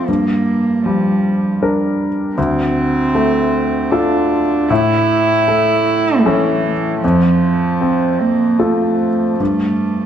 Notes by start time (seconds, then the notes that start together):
Already playing: F4 C5
0.08 G2 A#3
0.84 F3 G3
1.62 D4 A#4
2.36 D2 C4
3.15 A3
3.91 D4 F4 A4
4.69 A2 E4
5.48 A3
6.26 E3 C#4 A4
7.03 F2 F3
7.81 C4
8.21 A#3
8.58 A3 F4 A4
9.40 G2 A3